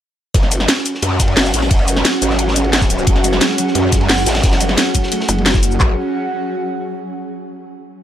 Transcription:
0.34 F#1 F#3 C#4 G#4, kick, closed hi-hat, ride
0.43 snare
0.50 F#4, closed hi-hat, ride, shaker
0.60 snare
0.68 snare, closed hi-hat, ride
0.77 snare
0.86 closed hi-hat, ride, shaker
0.94 snare
1.02 F#2 F#5, closed hi-hat, ride
1.19 kick, snare, closed hi-hat, ride, shaker
1.28 ride
1.36 F#1, snare, closed hi-hat, open hi-hat
1.45 snare, shaker
1.54 A1, closed hi-hat, ride, shaker
1.62 snare
1.70 F#1, kick, closed hi-hat, ride
1.79 ride
1.88 closed hi-hat, ride, shaker
1.96 snare
2.05 snare, closed hi-hat, ride
2.22 G#1, closed hi-hat, ride, shaker
2.30 snare
2.39 closed hi-hat, ride
2.48 snare
2.56 closed hi-hat, ride, shaker
2.64 ride
2.73 snare, closed hi-hat, ride
2.82 kick, snare, shaker
2.90 closed hi-hat, ride, shaker
2.99 shaker
3.07 F#1 F#3, kick, closed hi-hat, ride
3.16 snare
3.24 F#3, closed hi-hat, ride, shaker
3.33 snare
3.41 G#3, snare, closed hi-hat, ride
3.49 snare
3.58 F#3, closed hi-hat, ride, shaker
3.67 snare
3.75 F#2 F#4, closed hi-hat, ride
3.92 G#3, kick, snare, closed hi-hat, ride, shaker
4.01 ride
4.09 F#1 F#4, snare, closed hi-hat, open hi-hat
4.18 snare, shaker
4.26 A1, snare, closed hi-hat, ride, shaker
4.35 snare, ride
4.43 F#1 C#4, kick, snare, closed hi-hat, ride
4.52 snare, ride
4.61 F#3, closed hi-hat, ride, shaker
4.69 snare
4.78 C#4, snare, closed hi-hat, ride
4.95 F#3, kick, closed hi-hat, ride, shaker
5.03 snare
5.12 A3, closed hi-hat, ride
5.20 snare
5.28 F#1 G#3, closed hi-hat, ride, shaker
5.38 ride
5.46 F#3, snare, closed hi-hat, ride
5.54 kick, snare, shaker
5.63 closed hi-hat, shaker
5.71 shaker
5.80 F#1 F#3 C#4, kick, clap
5.85 F#4
5.90 F#5

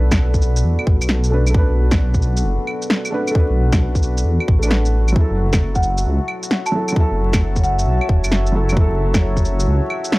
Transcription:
Already playing: B1 A3 B3 D4 F#4 A4 B4 D5
0.12 kick, snare, claves, shaker
0.34 kick, shaker
0.42 shaker
0.56 shaker
0.64 E2
0.79 claves
0.87 A1, kick
1.01 B1, claves, shaker
1.09 snare
1.24 shaker
1.30 A3 D4 B4
1.47 A3, claves, shaker
1.54 D4 B4, kick
1.70 B1
1.91 kick, snare, claves, shaker
2.14 kick, shaker
2.22 shaker
2.37 shaker
2.45 F#1
2.67 claves
2.82 shaker
2.90 snare
3.05 claves, shaker
3.10 A3 D4 B4
3.27 A3, claves, shaker
3.35 D4, kick
3.39 B4
3.50 B1
3.73 kick, snare, claves, shaker
3.95 kick, shaker
4.03 shaker
4.18 shaker
4.25 E2
4.40 claves
4.48 A1, kick
4.59 A3, claves, shaker
4.63 D4 B4
4.71 snare
4.85 shaker
5.08 claves, shaker
5.12 F#3 E4, kick
5.20 A4
5.30 F#1
5.53 E5, kick, snare, claves, shaker
5.64 C#5
5.75 F#5, kick, shaker
5.83 shaker
5.98 shaker
6.06 C#2
6.28 claves
6.43 shaker
6.51 snare
6.66 A5, claves, shaker
6.72 F#3 E4 A4
6.88 claves, shaker
6.92 F#3 A5, kick
6.97 E4 A4
7.11 F#1
7.33 kick, snare, claves, shaker
7.56 kick, shaker
7.64 F#5, shaker
7.79 shaker
7.87 B1
8.01 claves
8.09 E1, kick
8.24 F#1, claves, shaker
8.32 snare
8.46 shaker
8.52 F#3 E4 A4
8.69 F#3, claves, shaker
8.77 E4, kick
8.81 A4
8.92 F#1
9.14 kick, snare, claves, shaker
9.37 kick, shaker
9.45 shaker
9.60 shaker
9.68 C#2 B5
9.90 claves
10.05 shaker
10.12 snare

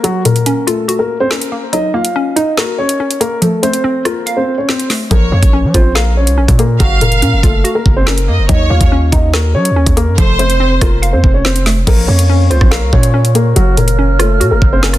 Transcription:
0.03 F#3 F#4, closed hi-hat
0.25 A#2 A#3 A#4, closed hi-hat
0.36 closed hi-hat
0.46 C#4, closed hi-hat
0.67 A3 F4 A4, closed hi-hat
0.88 F#4, closed hi-hat
0.99 A#3 A#4
1.20 C4 C5
1.30 A#3 C#4, snare
1.42 closed hi-hat
1.52 A#3
1.73 F#3 D#4 D#5, closed hi-hat
1.94 A#3 F4 F5
2.05 closed hi-hat
2.16 C#4
2.36 D#4 D#5, closed hi-hat
2.57 A#3 F#4 A#4, snare
2.78 C#4 C#5
2.89 closed hi-hat
3.00 C#4
3.11 closed hi-hat
3.21 A#3 A#4, closed hi-hat
3.42 F3 A3 A4, closed hi-hat
3.63 A3 C4 C5, closed hi-hat
3.73 closed hi-hat
3.84 C4
4.05 A#3 F4 A#4, cross-stick, closed hi-hat
4.26 F5, closed hi-hat
4.37 C4 C5
4.58 C#4 C#5
4.69 C4 C5, snare
4.80 closed hi-hat
4.90 A3, snare, open hi-hat
5.11 A#1 F3 A#3 A#4 C#5, kick, closed hi-hat
5.32 F2 A#3 C#4 C#5
5.43 A#1, kick, closed hi-hat
5.53 C#4
5.64 F3
5.74 A#1 C4 F4 C5, kick, closed hi-hat
5.95 A#3 A#4 F5, snare
6.17 C#4 C#5
6.27 C2, closed hi-hat
6.38 A#1 C#4
6.48 A#2, kick, closed hi-hat
6.59 A#3 A#4, closed hi-hat
6.80 F#1 F#3 F#4 F5, kick, closed hi-hat
7.01 A#2 A#3 A#4, closed hi-hat
7.12 closed hi-hat
7.22 A#2 C#4, closed hi-hat
7.33 F#1
7.43 F#1 A3 F4 A4, kick, closed hi-hat
7.64 F#4, closed hi-hat
7.75 A#3 A#4
7.86 F#1, kick
7.97 C4 C5
8.06 A#3 C#4 A#4, snare
8.18 closed hi-hat
8.28 F#2 A#3 D#5
8.39 F#1
8.49 D#2 F#3 D#4 C#5 D#5, kick, closed hi-hat
8.70 D#2 A#3 F4 F5
8.81 D#2, kick, closed hi-hat
8.92 C#4
9.12 D#2 D#4 D#5, kick, closed hi-hat
9.34 A#3 F#4 A#4, snare
9.55 F#3 C#4 C#5
9.65 closed hi-hat
9.71 D#2
9.76 C#4
9.86 D#2, kick, closed hi-hat
9.97 A#3 A#4, closed hi-hat
10.08 F#2
10.18 F1 F3 A3 A4 C5, kick, closed hi-hat
10.39 A3 C4 C5, closed hi-hat
10.50 closed hi-hat
10.60 C4
10.81 F1 A#3 F4 A#4, kick, cross-stick, closed hi-hat
11.02 F5, closed hi-hat
11.13 F2 C4 C5
11.24 F1, kick
11.34 C#4 C#5
11.45 C4 C5, snare
11.56 closed hi-hat
11.66 A3, snare, open hi-hat
11.87 A#1 F3 A#3 A#4 C#5 F5 C#6, kick, closed hi-hat, crash
12.08 F2 A#3 C#4 C#5
12.19 closed hi-hat
12.29 C#4
12.50 C#2 C4 F4 C5, closed hi-hat
12.61 A#1, kick, cross-stick
12.71 A#3 A#4 F5, snare
12.82 C2
12.93 A#2 C#4 C#5, kick
13.03 closed hi-hat
13.14 C#4
13.25 closed hi-hat
13.35 A#3 A#4, closed hi-hat
13.56 F#1 F#3 F#4 F5 F6, closed hi-hat
13.77 A#2 A#3 A#4, closed hi-hat
13.88 closed hi-hat
13.99 C#4
14.19 A3 F4 A4, cross-stick, closed hi-hat
14.40 A#2 F#4, closed hi-hat
14.51 F#1 A#3 A#4
14.62 F#1, kick
14.73 C4 C5
14.83 A#3 C#4 A#4, snare
14.93 cross-stick, closed hi-hat

